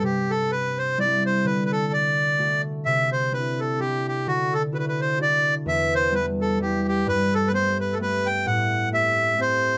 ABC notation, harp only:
X:1
M:3/4
L:1/8
Q:"Swing" 1/4=128
K:Dmix
V:1 name="Harp"
C,4 [G,CE]2 | D,4 [A,DF]2 | C,2 [CDE]2 [CDE]2 | D,2 [DEF]2 [DEF]2 |
E,,2 [G,B,E]2 [G,B,E]2 | G,,2 [A,B,G]2 [A,B,G]2 | A,,2 [A,CG]2 [A,CG]2 |]